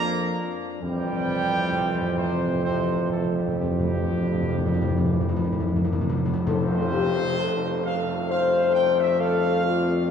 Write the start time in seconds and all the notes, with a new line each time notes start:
Already playing: F2 F3 A#3 D4 A#5
0.82 F2 E3 G3 C4 G5
0.90 F2
0.97 F2
1.12 F2
1.20 F2
1.27 F2
1.42 F2
1.50 F2
1.57 F2
1.64 F2
1.72 F2
1.79 F2
1.86 F2
1.94 F2
2.02 F2
2.09 F2
2.17 F2 C3 C5
2.24 F2
2.32 F2
2.39 F2
2.47 F2
2.55 F2
2.62 F2 C3 E3 C4 C5
2.70 F2
2.77 F2
2.85 F2
2.93 F2
3.01 F2
3.09 F2 A2 A4
3.17 F2
3.24 F2
3.32 F2 G2 G4
3.40 F2
3.48 F2
3.56 F2 G2 E3 C4 G4
3.64 F2
3.72 F2
3.79 F2
3.88 F2
3.95 F2
4.03 F2
4.11 F2
4.19 F2
4.27 F2
4.34 F2
4.43 F2
4.50 F2 C3
4.58 F2
4.66 F2
4.74 F2
4.82 F2
4.90 F2
4.98 F2
5.02 F2 E3
5.13 F2
5.21 F2
5.29 F2
5.37 F2
5.45 F2
5.50 F2 E3
5.60 F2
5.68 F2
5.76 F2
5.85 F2
5.93 F2
6.01 F2
6.09 F2
6.17 F2
6.26 F2
6.34 F2
6.46 F2 G3 A3 A4 C5, tam-tam
6.93 G4
7.39 A4
7.85 F5
8.30 C5 F5
8.75 G5
8.98 E5
9.20 A4 F5
9.65 F4